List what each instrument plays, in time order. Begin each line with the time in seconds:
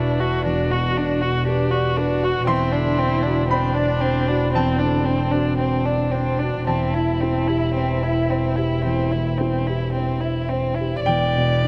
Already playing: double bass E1, grand piano E2 B2 D4 F#4 B4 D5 A5 B5, violin D4, cello E4
0.20 violin F#4, grand piano F#4
0.44 grand piano E2, violin D4, cello F#4
0.71 grand piano B2, violin F#4
0.97 grand piano D4, violin D4
1.21 violin F#4, grand piano F#4
1.45 violin D4, cello G4, grand piano B4
1.71 violin F#4, grand piano D5
1.97 violin D4, cello F#4, grand piano B4
2.23 grand piano F#4, violin F#4
2.47 double bass E1, grand piano E2 C6, violin C4, cello E4
2.73 grand piano D3, violin D4
2.99 violin C4, grand piano D4
3.23 violin D4, grand piano F#4
3.48 violin C4, cello D4, grand piano B5
3.53 grand piano C5
3.74 violin D4
3.79 grand piano D5
4.01 violin C4, grand piano C5
4.28 violin D4, grand piano F#4
4.53 grand piano E2 A5, violin C4, cello C4
4.79 grand piano D3, violin D4
5.05 violin C4, grand piano D4
5.31 violin D4, grand piano F#4
5.58 violin C4, cello C4, grand piano C5
5.85 violin D4, grand piano D5
6.11 violin C4, cello D4, grand piano C5
6.39 violin D4, grand piano F#4
6.66 double bass E1, grand piano E2 A5, violin C4, cello E4
6.94 grand piano E3, violin E4
7.21 violin C4, grand piano E4
7.48 violin E4, grand piano G4
7.75 violin C4, grand piano C5 G5
8.03 violin E4, grand piano E5
8.30 violin C4, grand piano C5
8.56 violin E4, grand piano G4
8.84 grand piano E2, violin C4
9.12 grand piano E3, violin E4
9.38 violin C4, grand piano E4
9.67 violin E4, grand piano G4
9.93 violin C4
9.97 grand piano C5
10.20 violin E4, grand piano E5
10.49 violin C4, grand piano C5
10.75 violin E4
10.81 grand piano G4
11.01 violin D5
11.05 double bass E1, grand piano E2 G5, cello B3
11.36 grand piano B2
11.63 grand piano D4